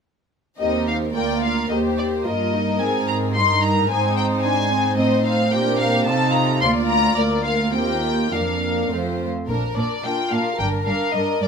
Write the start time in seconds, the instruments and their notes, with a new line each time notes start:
0.60 cello section D#2, viola section C4 G4, violin section D#4 A#4 D#5
0.88 violin section F5
1.16 cello section D2, viola section A#3 A#4, violin section F4 D5 G5
1.44 violin section F5
1.70 cello section D#2, viola section A#3 G4, violin section G4 C5 D#5
1.99 violin section D5
2.26 cello section G2, viola section F4, violin section A#4 D#5
2.53 viola section D#4
2.80 cello section G#2, viola section C4 D#4, violin section G#4 G#5
3.08 violin section A#5
3.35 cello section G2, violin section D#4 A#4 C6, viola section D#4
3.63 violin section A#5
3.90 cello section G#2, viola section C4 D#4, violin section D#4 C5 G#5
4.16 violin section G5
4.43 viola section D4, violin section G#5
4.72 viola section C4
4.98 cello section A2, viola section C4, violin section C5 D#5
5.26 violin section F5
5.53 cello section A#2, viola section D4, violin section G4 A#4 G5
5.81 violin section F5
6.07 cello section C3, viola section D#4, violin section F4 A4 A5
6.34 violin section A#5
6.61 cello section D2, viola section A#3 F4, violin section F4 D5 C6
6.89 violin section A#5
7.17 cello section D2, viola section A#3 F4, violin section A#4 D5
7.45 violin section F5
7.73 cello section D#2, viola section C4, violin section G4 A#4 G5
8.02 viola section A#3
8.32 cello section F2, viola section A#3 D4, violin section A#4 F5
8.89 cello section F2, viola section A3 C4, violin section F4 C5
9.48 double bass section A#1, cello section A#2, violin section D4 A#4
9.76 cello section A#2, violin section D4 A#4 D5
10.03 cello section A#2, violin section D4 A#4 G5, viola section F4
10.31 cello section A#2, violin section D4 A#4 F5
10.58 double bass section G1, cello section G2, violin section D4 A#4 G5, viola section A#4
10.86 cello section G2, violin section D4 A#4 F5
11.13 cello section G2, violin section D4 A#4 D#5
11.40 cello section G2, violin section D4 A#4 D5